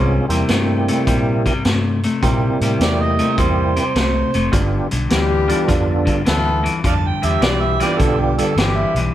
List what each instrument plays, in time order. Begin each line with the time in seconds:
Already playing: fingered electric bass C2, clean electric guitar C3 G3, tonewheel organ G#3 B3 C#4 F4 G#4, harmonica C5
0.29 fingered electric bass E2, clean electric guitar C3 G3, tonewheel organ G3 A#3 C4 E4 G4, closed hi-hat
0.49 fingered electric bass G2, clean electric guitar C3 A3, snare, closed hi-hat
0.88 clean electric guitar C3 A3, closed hi-hat
1.07 fingered electric bass A#2, clean electric guitar C3 G3, kick, closed hi-hat
1.46 clean electric guitar C3 G3, kick, closed hi-hat
1.65 fingered electric bass G2, clean electric guitar C3 A3, snare, closed hi-hat
2.03 clean electric guitar C3 A3, closed hi-hat
2.22 fingered electric bass A#2, clean electric guitar C3 G3, tonewheel organ G3 A#3 C4 E4 G4, kick, closed hi-hat
2.61 fingered electric bass A2, clean electric guitar C3 G3, closed hi-hat
2.80 fingered electric bass E2, clean electric guitar C3 A3, harmonica D5, snare, closed hi-hat
3.01 harmonica D#5
3.19 clean electric guitar C3 A3, closed hi-hat
3.38 fingered electric bass E2, clean electric guitar C3 G3, harmonica C5, kick, closed hi-hat
3.76 clean electric guitar C3 G3, closed hi-hat
3.80 harmonica C5
3.95 fingered electric bass C2, clean electric guitar C3 A3, snare, closed hi-hat
4.34 fingered electric bass F1, clean electric guitar C3 A3, closed hi-hat
4.52 fingered electric bass G1, clean electric guitar G2 D3, tonewheel organ G3 B3 D4 F4 G4, kick, closed hi-hat
4.91 fingered electric bass B1, clean electric guitar G2 D3, closed hi-hat
5.09 fingered electric bass D2, clean electric guitar G2 E3, horn section G3 B3 F4 G4, snare, closed hi-hat
5.48 clean electric guitar G2 E3, tonewheel organ G3 B3 D4 F4 A4, closed hi-hat
5.68 fingered electric bass F2, clean electric guitar G2 D3, kick, closed hi-hat
6.05 clean electric guitar G2 D3, kick, closed hi-hat
6.25 fingered electric bass D2, clean electric guitar G2 E3, horn section A3 B3 F4 A4, snare, closed hi-hat
6.63 clean electric guitar G2 E3, closed hi-hat
6.84 fingered electric bass F2, clean electric guitar G2 D3, harmonica D5 F5 A5, kick, closed hi-hat
7.07 harmonica G5
7.22 fingered electric bass E2, clean electric guitar G2 D3, horn section G3 B3 F4 G4, harmonica E5, closed hi-hat
7.41 fingered electric bass B1, clean electric guitar G2 E3, harmonica D5, snare, closed hi-hat
7.62 harmonica E5
7.80 clean electric guitar G2 E3, tonewheel organ G3 B3 D4 F4 G4, harmonica D5, snare, closed hi-hat
7.98 fingered electric bass B1, clean electric guitar G2 D3, harmonica A4, kick, closed hi-hat
8.19 harmonica G4
8.38 clean electric guitar G2 D3, harmonica A4, closed hi-hat
8.56 fingered electric bass G1, clean electric guitar G2 E3, horn section G3 B3 F4 G4, harmonica G4, snare, closed hi-hat
8.76 harmonica E4
8.94 fingered electric bass B1, clean electric guitar G2 E3, closed hi-hat